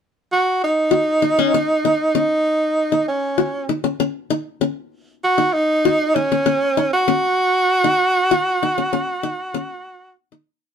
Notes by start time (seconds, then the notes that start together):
0.32 F#4
0.64 D#4
0.91 F#4
1.22 D#4
1.39 C#4
1.54 C#4
1.85 D#4
2.15 C#4 D#4
2.92 D#4
3.08 C#4
3.38 F#4
3.69 D#4
3.84 C#4
4.00 C#4
4.30 D#4
4.61 C#4
5.24 F#4
5.38 D#4
5.53 D#4
5.85 F#4
6.15 C#4 D#4
6.32 C#4
6.46 C#4
6.77 D#4
6.93 F#4
7.08 C#4
7.84 D#4
8.31 F#4
8.63 D#4
8.78 C#4
8.93 C#4
9.23 D#4
9.54 C#4
10.32 D#4